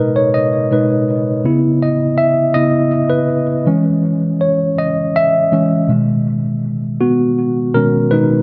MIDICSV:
0, 0, Header, 1, 2, 480
1, 0, Start_track
1, 0, Key_signature, 5, "major"
1, 0, Tempo, 740741
1, 941, Time_signature, 6, 3, 24, 8
1, 5459, End_track
2, 0, Start_track
2, 0, Title_t, "Tine electric piano"
2, 0, Program_c, 0, 4
2, 0, Control_c, 0, 64, 127
2, 0, Note_on_c, 0, 47, 48
2, 0, Note_on_c, 0, 56, 48
2, 0, Note_on_c, 0, 63, 56
2, 0, Note_on_c, 0, 70, 76
2, 0, Note_on_c, 0, 71, 67
2, 0, Note_on_c, 0, 75, 101
2, 103, Note_on_c, 0, 73, 79
2, 104, Note_off_c, 0, 71, 0
2, 221, Note_off_c, 0, 75, 0
2, 221, Note_on_c, 0, 75, 83
2, 226, Note_off_c, 0, 73, 0
2, 464, Note_off_c, 0, 47, 0
2, 464, Note_off_c, 0, 56, 0
2, 464, Note_on_c, 0, 47, 38
2, 464, Note_on_c, 0, 56, 37
2, 468, Note_off_c, 0, 63, 0
2, 468, Note_off_c, 0, 75, 0
2, 468, Note_on_c, 0, 63, 46
2, 471, Note_on_c, 0, 71, 67
2, 679, Note_off_c, 0, 47, 0
2, 679, Note_off_c, 0, 56, 0
2, 681, Note_off_c, 0, 63, 0
2, 690, Note_off_c, 0, 71, 0
2, 936, Note_on_c, 0, 49, 56
2, 943, Note_on_c, 0, 59, 53
2, 944, Note_on_c, 0, 64, 69
2, 948, Control_c, 0, 64, 0
2, 954, Note_off_c, 0, 70, 0
2, 1076, Control_c, 0, 64, 127
2, 1183, Note_on_c, 0, 75, 77
2, 1257, Note_off_c, 0, 49, 0
2, 1261, Note_off_c, 0, 59, 0
2, 1262, Note_off_c, 0, 64, 0
2, 1410, Note_on_c, 0, 76, 86
2, 1429, Note_off_c, 0, 75, 0
2, 1639, Note_off_c, 0, 76, 0
2, 1647, Note_on_c, 0, 75, 95
2, 1657, Note_on_c, 0, 49, 43
2, 1658, Note_on_c, 0, 59, 42
2, 1660, Note_on_c, 0, 64, 50
2, 1875, Note_off_c, 0, 49, 0
2, 1876, Note_off_c, 0, 59, 0
2, 1877, Note_off_c, 0, 64, 0
2, 2006, Note_on_c, 0, 71, 81
2, 2025, Note_off_c, 0, 75, 0
2, 2118, Note_off_c, 0, 71, 0
2, 2375, Note_on_c, 0, 52, 62
2, 2379, Note_on_c, 0, 61, 65
2, 2380, Note_on_c, 0, 56, 57
2, 2391, Control_c, 0, 64, 0
2, 2507, Control_c, 0, 64, 127
2, 2857, Note_on_c, 0, 73, 69
2, 3072, Note_off_c, 0, 52, 0
2, 3074, Note_off_c, 0, 56, 0
2, 3074, Note_off_c, 0, 61, 0
2, 3101, Note_on_c, 0, 75, 87
2, 3107, Note_off_c, 0, 73, 0
2, 3344, Note_on_c, 0, 76, 81
2, 3348, Note_off_c, 0, 75, 0
2, 3579, Note_on_c, 0, 52, 52
2, 3580, Note_on_c, 0, 56, 45
2, 3582, Note_on_c, 0, 61, 59
2, 3796, Note_off_c, 0, 52, 0
2, 3797, Note_off_c, 0, 56, 0
2, 3797, Note_off_c, 0, 76, 0
2, 3798, Note_off_c, 0, 61, 0
2, 3814, Note_on_c, 0, 47, 48
2, 3816, Note_on_c, 0, 51, 45
2, 3821, Note_on_c, 0, 56, 51
2, 3829, Control_c, 0, 64, 0
2, 3960, Control_c, 0, 64, 127
2, 4137, Note_off_c, 0, 47, 0
2, 4138, Note_off_c, 0, 51, 0
2, 4141, Note_off_c, 0, 56, 0
2, 4540, Note_on_c, 0, 66, 68
2, 4543, Note_on_c, 0, 59, 55
2, 4996, Note_off_c, 0, 59, 0
2, 5018, Note_on_c, 0, 70, 77
2, 5019, Note_on_c, 0, 47, 40
2, 5023, Note_on_c, 0, 51, 38
2, 5027, Note_on_c, 0, 56, 47
2, 5030, Note_on_c, 0, 61, 54
2, 5035, Note_off_c, 0, 66, 0
2, 5127, Note_off_c, 0, 70, 0
2, 5136, Note_off_c, 0, 61, 0
2, 5236, Note_off_c, 0, 47, 0
2, 5238, Note_off_c, 0, 51, 0
2, 5240, Note_off_c, 0, 56, 0
2, 5255, Note_on_c, 0, 71, 89
2, 5258, Note_on_c, 0, 47, 46
2, 5261, Note_on_c, 0, 51, 49
2, 5265, Note_on_c, 0, 56, 53
2, 5265, Note_on_c, 0, 63, 70
2, 5459, Note_off_c, 0, 47, 0
2, 5459, Note_off_c, 0, 51, 0
2, 5459, Note_off_c, 0, 56, 0
2, 5459, Note_off_c, 0, 63, 0
2, 5459, Note_off_c, 0, 71, 0
2, 5459, End_track
0, 0, End_of_file